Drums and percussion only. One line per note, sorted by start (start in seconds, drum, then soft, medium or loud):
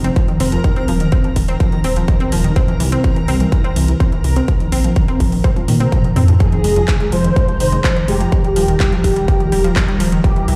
0.04 closed hi-hat soft
0.16 kick loud
0.16 closed hi-hat soft
0.28 closed hi-hat soft
0.40 open hi-hat medium
0.52 closed hi-hat soft
0.64 kick loud
0.64 closed hi-hat soft
0.76 closed hi-hat soft
0.88 open hi-hat medium
1.00 closed hi-hat soft
1.12 kick loud
1.12 closed hi-hat soft
1.24 closed hi-hat soft
1.36 kick medium
1.36 open hi-hat medium
1.48 closed hi-hat soft
1.60 kick loud
1.60 closed hi-hat soft
1.72 closed hi-hat soft
1.84 open hi-hat medium
1.96 closed hi-hat soft
2.08 kick loud
2.08 closed hi-hat soft
2.20 closed hi-hat soft
2.32 open hi-hat medium
2.44 closed hi-hat soft
2.56 kick loud
2.56 closed hi-hat medium
2.68 closed hi-hat soft
2.80 open hi-hat medium
2.92 closed hi-hat medium
3.04 kick loud
3.04 closed hi-hat soft
3.16 closed hi-hat soft
3.28 open hi-hat medium
3.40 closed hi-hat soft
3.52 kick loud
3.52 closed hi-hat medium
3.64 closed hi-hat soft
3.76 open hi-hat medium
3.88 closed hi-hat soft
4.00 kick loud
4.00 closed hi-hat medium
4.12 closed hi-hat soft
4.24 open hi-hat medium
4.36 closed hi-hat soft
4.48 kick loud
4.48 closed hi-hat medium
4.60 closed hi-hat soft
4.72 open hi-hat medium
4.84 closed hi-hat medium
4.96 kick loud
4.96 closed hi-hat medium
5.08 closed hi-hat soft
5.20 kick medium
5.20 open hi-hat medium
5.32 open hi-hat medium
5.44 kick loud
5.44 closed hi-hat medium
5.44 high tom medium
5.56 closed hi-hat soft
5.56 high tom medium
5.68 open hi-hat medium
5.80 closed hi-hat soft
5.80 mid tom medium
5.92 kick loud
5.92 closed hi-hat medium
5.92 mid tom medium
6.04 closed hi-hat soft
6.16 mid tom medium
6.16 open hi-hat loud
6.28 closed hi-hat soft
6.28 mid tom medium
6.40 kick loud
6.40 closed hi-hat medium
6.52 closed hi-hat soft
6.64 open hi-hat medium
6.76 closed hi-hat medium
6.88 kick loud
6.88 clap loud
6.88 closed hi-hat medium
7.00 closed hi-hat soft
7.12 open hi-hat loud
7.24 closed hi-hat soft
7.36 kick loud
7.36 closed hi-hat medium
7.48 closed hi-hat soft
7.60 open hi-hat loud
7.72 closed hi-hat soft
7.84 kick loud
7.84 clap loud
7.84 closed hi-hat medium
7.96 closed hi-hat soft
8.08 open hi-hat loud
8.21 closed hi-hat medium
8.32 kick loud
8.32 closed hi-hat soft
8.44 closed hi-hat soft
8.56 open hi-hat loud
8.68 closed hi-hat medium
8.80 kick loud
8.80 clap loud
8.80 closed hi-hat soft
8.92 closed hi-hat soft
9.04 kick medium
9.04 open hi-hat loud
9.16 closed hi-hat soft
9.28 kick loud
9.28 closed hi-hat medium
9.40 closed hi-hat soft
9.52 open hi-hat loud
9.64 closed hi-hat soft
9.76 kick loud
9.76 clap loud
9.76 closed hi-hat medium
9.88 closed hi-hat soft
10.00 open hi-hat loud
10.12 closed hi-hat medium
10.24 kick loud
10.24 closed hi-hat soft
10.36 closed hi-hat soft
10.48 open hi-hat loud